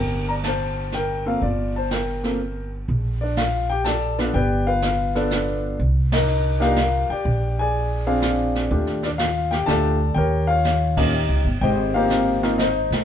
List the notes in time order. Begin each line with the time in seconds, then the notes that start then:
Already playing: G1 A#4 G5
0.29 D5 A#5
0.43 C5 A5, snare, hi-hat pedal
0.92 G5, snare, hi-hat pedal
0.97 A#4
1.26 A#3 C4 F4 A4 F5
1.42 G1 F4 D5, brush sweep, kick
1.76 C5 A5
1.91 A#4 G5, snare, hi-hat pedal
2.24 A#3 C4 F4 A4, snare
2.88 A#1, brush sweep, kick
3.21 D4 D5
3.37 F4 F5, snare, hi-hat pedal
3.70 G4 G5
3.85 A4 D5 A5, snare, hi-hat pedal
4.19 B3 D4 F4 A4, snare
4.34 G1 G4 B4 D5 G5, brush sweep, kick
4.67 F4 B4 F5
4.82 snare, hi-hat pedal
5.15 B3 D4 F4 A4 B4 D5, snare
5.31 snare, hi-hat pedal
5.79 C2, brush sweep, kick
6.12 D#4 A#4 D#5, snare, ride
6.28 hi-hat pedal
6.60 A#3 D4 D#4 G4 F5, snare
6.64 F4 A#4
6.76 snare, hi-hat pedal
7.10 G4 D5 G5, muted upright bass stroke
7.25 A#1, brush sweep, kick
7.59 G#4 D5 G#5
8.07 C4 D4 F4 G#4 D5 F5
8.22 snare, hi-hat pedal
8.55 snare
8.71 D#2 A3 D4 F4 G4, brush sweep, kick
8.87 snare
9.03 D4 D5, snare
9.18 F4 F5, snare, hi-hat pedal
9.51 G4 G5, snare
9.66 D2 A3 D4 F4 G4 A4 D5 A5, snare, hi-hat pedal
10.15 D#2 G4 A#4 C#5 G5, brush sweep, kick
10.47 F4 C#5 F5
10.64 snare, hi-hat pedal
10.97 A#3 C#4 D#4 F4 G4 D#5, kick, crash
11.29 C#2
11.45 G1
11.61 G#1 G4 C5 D#5 G5, brush sweep, kick
11.94 A#3 C4 D#4 F4 G4 C5 F5
12.10 snare, hi-hat pedal
12.43 A#3 C4 D#4 F4, snare
12.58 D#4 C5 D#5, snare, hi-hat pedal
12.91 A2, snare